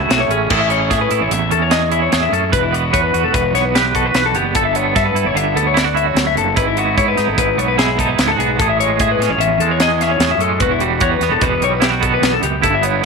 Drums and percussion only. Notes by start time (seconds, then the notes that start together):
0.10 snare, closed hi-hat
0.31 closed hi-hat
0.50 kick, crash
0.70 closed hi-hat
0.91 kick, snare, closed hi-hat
1.11 closed hi-hat
1.31 closed hi-hat
1.51 closed hi-hat
1.71 snare, closed hi-hat
1.92 closed hi-hat
2.12 snare, closed hi-hat
2.33 closed hi-hat
2.53 kick, closed hi-hat
2.74 closed hi-hat
2.94 kick, closed hi-hat
3.14 closed hi-hat
3.34 kick, closed hi-hat
3.55 snare, closed hi-hat
3.75 snare, closed hi-hat
3.95 kick, closed hi-hat
4.14 snare, closed hi-hat
4.35 closed hi-hat
4.55 kick, closed hi-hat
4.75 closed hi-hat
4.96 kick, snare, closed hi-hat
5.16 closed hi-hat
5.37 closed hi-hat
5.57 closed hi-hat
5.77 snare, closed hi-hat
5.97 closed hi-hat
6.17 snare, closed hi-hat
6.37 closed hi-hat
6.57 kick, closed hi-hat
6.77 closed hi-hat
6.98 kick, closed hi-hat
7.17 snare, closed hi-hat
7.38 kick, closed hi-hat
7.59 closed hi-hat
7.79 snare, closed hi-hat
7.99 kick, closed hi-hat
8.19 snare, closed hi-hat
8.40 closed hi-hat
8.60 kick, closed hi-hat
8.80 closed hi-hat
8.99 kick, closed hi-hat
9.22 snare, closed hi-hat
9.41 closed hi-hat
9.60 closed hi-hat
9.80 snare, closed hi-hat
10.01 snare, closed hi-hat
10.20 snare, closed hi-hat
10.40 closed hi-hat
10.60 kick, closed hi-hat
10.80 closed hi-hat
11.00 kick, closed hi-hat
11.21 snare, closed hi-hat
11.41 kick, closed hi-hat
11.62 closed hi-hat
11.82 snare, closed hi-hat
12.03 kick, closed hi-hat
12.23 snare, closed hi-hat
12.43 closed hi-hat
12.64 kick, closed hi-hat
12.83 closed hi-hat